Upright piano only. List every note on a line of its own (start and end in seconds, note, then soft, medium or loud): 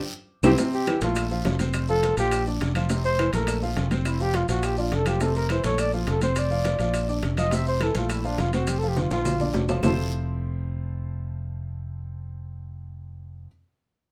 0.44 0.53 C4 loud
0.44 0.53 E4 loud
0.44 0.53 G4 medium
0.59 0.82 C3 medium
0.59 0.82 C4 medium
0.88 1.00 E3 medium
0.88 1.00 E4 medium
1.02 1.26 A3 medium
1.02 1.26 A4 medium
1.31 1.55 F3 medium
1.31 1.55 F4 medium
1.60 1.83 C4 medium
1.60 1.83 C5 medium
1.89 2.12 F3 medium
1.89 2.12 F4 medium
2.19 2.42 F3 medium
2.19 2.42 F4 medium
2.47 2.70 D4 medium
2.47 2.70 D5 medium
2.76 2.87 F3 medium
2.76 2.87 F4 medium
2.90 3.13 C3 medium
2.90 3.14 C4 medium
3.19 3.30 E3 medium
3.19 3.31 E4 medium
3.34 3.57 A3 medium
3.34 3.57 A4 medium
3.62 3.86 F3 medium
3.62 3.86 F4 medium
3.91 4.15 C4 medium
3.91 4.15 C5 medium
4.20 4.44 F3 medium
4.20 4.44 F4 medium
4.49 4.73 F3 medium
4.49 4.73 F4 medium
4.78 5.01 D4 medium
4.78 5.01 D5 medium
5.06 5.18 F3 medium
5.06 5.18 F4 medium
5.21 5.45 C3 medium
5.21 5.45 C4 medium
5.50 5.62 E3 medium
5.50 5.62 E4 medium
5.64 5.88 A3 medium
5.64 5.88 A4 medium
5.94 6.17 F3 medium
5.94 6.17 F4 medium
6.22 6.46 C4 medium
6.22 6.46 C5 medium
6.51 6.74 F3 medium
6.51 6.75 F4 medium
6.80 7.03 F3 medium
6.80 7.04 F4 medium
7.09 7.32 D4 medium
7.09 7.33 D5 medium
7.38 7.50 F3 medium
7.38 7.50 F4 medium
7.52 7.76 C3 medium
7.52 7.76 C4 medium
7.82 7.93 E3 medium
7.82 7.93 E4 medium
7.95 8.19 A3 medium
7.95 8.19 A4 medium
8.24 8.48 F3 medium
8.24 8.48 F4 medium
8.54 8.77 C4 medium
8.54 8.77 C5 medium
8.83 9.06 F3 medium
8.83 9.06 F4 medium
9.12 9.35 F3 medium
9.12 9.35 F4 medium
9.41 9.64 D4 medium
9.41 9.64 D5 medium
9.69 9.81 F3 medium
9.69 9.81 F4 medium
9.83 13.47 F3 medium
9.83 13.47 C4 medium
9.83 13.47 E4 medium
9.83 13.47 F4 medium
9.83 13.47 A4 medium
9.83 13.48 C5 medium